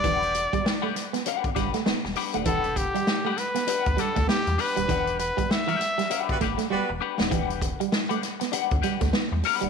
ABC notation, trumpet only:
X:1
M:4/4
L:1/16
Q:"Swing 16ths" 1/4=99
K:Em
V:1 name="Trumpet"
d6- d z8 z | A2 G4 B4 A2 G2 B2- | B2 B2 e6 z6 | z16 |]